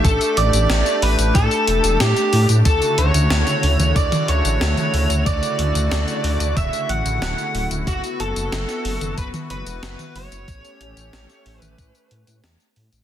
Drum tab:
HH |xxxxxxoxxxxxxxox|xxxxxxoxxxxxxxox|xxxxxxoxxxxxxxox|xxxxxxoxxxxxxxox|
TB |xx-xxx-xxx-xxx-x|xx-xxx-xxx-xxx-x|xx-xxx-xxx-xxx-x|xx-xxx-xxx-xxx-x|
SD |----o-------o---|----oo------o---|----o-------o---|----oo------o---|
T2 |----------------|-------o-o---o--|----------------|-------o-o---o--|
BD |o-------o-------|o-------o-------|o-------o-------|o-------o-------|

HH |xxxxxxoxxxxxxxox|
TB |xx-xxx-xxx-xxx-x|
SD |----oo------o---|
T2 |-------o--------|
BD |o-------o-------|